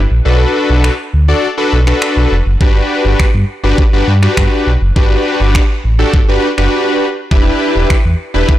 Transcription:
0.11 0.21 A#1 medium
0.25 0.46 B1 loud
0.25 0.92 D4 medium
0.25 0.92 F#4 medium
0.25 0.92 A4 medium
0.25 0.92 B4 loud
0.70 0.90 B1 loud
0.84 finger snap loud
1.14 1.34 D2 medium
1.28 1.47 D4 medium
1.28 1.47 F#4 medium
1.28 1.47 A4 medium
1.28 1.48 D5 loud
1.57 1.77 D4 loud
1.57 1.77 F#4 medium
1.57 1.77 A4 loud
1.57 1.77 B4 loud
1.73 1.93 B1 medium
1.87 2.34 D4 medium
1.87 2.35 F#4 medium
1.87 2.35 A4 medium
1.87 2.35 B4 medium
1.87 finger snap medium
2.02 finger snap loud
2.17 2.27 B1 medium
2.31 2.41 F1 medium
2.46 2.56 F#1 medium
2.61 2.81 G1 medium
2.61 3.27 D4 medium
2.61 3.27 F#4 medium
2.61 3.27 G4 medium
2.61 3.27 B4 loud
2.61 kick loud
3.05 3.15 G1 loud
3.20 3.25 G2 soft
3.20 finger snap loud
3.20 kick loud
3.34 3.44 G2 medium
3.63 3.74 G1 medium
3.63 3.83 D4 loud
3.63 3.83 F#4 medium
3.63 3.83 G4 medium
3.63 3.83 B4 loud
3.78 kick loud
3.93 4.03 G1 loud
3.93 4.12 D4 loud
3.93 4.12 F#4 loud
3.93 4.12 G4 medium
3.93 4.12 B4 loud
4.07 4.28 G2 loud
4.22 4.70 D4 medium
4.22 4.70 F#4 medium
4.22 4.70 G4 medium
4.22 4.70 B4 medium
4.22 finger snap medium
4.37 4.47 G2 loud
4.37 finger snap loud
4.37 kick loud
4.67 4.77 B1 medium
4.81 4.91 F#1 medium
4.96 5.16 G1 loud
4.96 5.62 D4 medium
4.96 5.62 F#4 medium
4.96 5.63 G4 medium
4.96 5.63 B4 loud
4.96 kick loud
5.40 5.60 G1 loud
5.55 finger snap loud
5.55 kick loud
5.84 6.04 A1 medium
5.99 6.18 D4 loud
5.99 6.18 F#4 medium
5.99 6.18 G4 medium
5.99 6.18 A4 loud
6.13 6.24 G1 medium
6.13 kick loud
6.28 6.38 G1 medium
6.28 6.47 D4 loud
6.28 6.48 F#4 medium
6.28 6.48 G4 medium
6.28 6.48 B4 loud
6.58 6.68 F#1 medium
6.58 7.05 D4 medium
6.58 7.05 F#4 medium
6.58 7.05 G4 medium
6.58 7.05 B4 loud
6.58 finger snap medium
7.31 7.51 E1 loud
7.31 7.98 D4 medium
7.31 7.98 E4 medium
7.31 7.98 G4 medium
7.31 7.98 B4 loud
7.31 kick loud
7.76 7.86 E1 medium
7.90 7.96 E2 soft
7.90 finger snap loud
7.90 kick loud
8.05 8.15 E2 loud
8.34 8.44 E1 medium
8.34 8.53 D4 medium
8.34 8.53 E4 medium
8.34 8.53 G4 medium
8.34 8.53 B4 loud
8.49 kick loud

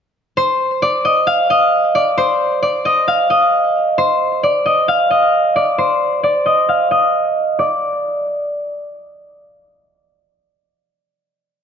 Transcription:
0.37 2.17 C5 loud
0.82 1.11 D5 medium
1.05 1.50 D#5 medium
1.27 2.93 F5 medium
1.50 2.01 D#5 medium
1.95 2.62 D5 medium
2.18 3.98 C5 medium
2.62 2.91 D5 medium
2.85 3.30 D#5 medium
3.08 4.74 F5 medium
3.30 4.49 D#5 medium
3.98 5.78 C5 medium
4.43 4.72 D5 medium
4.66 5.10 D#5 medium
4.88 6.55 F5 medium
5.11 5.62 D#5 medium
5.56 6.23 D5 medium
5.78 7.76 C5 medium
6.23 6.52 D5 medium
6.46 6.91 D#5 medium
6.69 8.35 F5 medium
6.91 7.65 D#5 medium
7.59 9.44 D5 medium

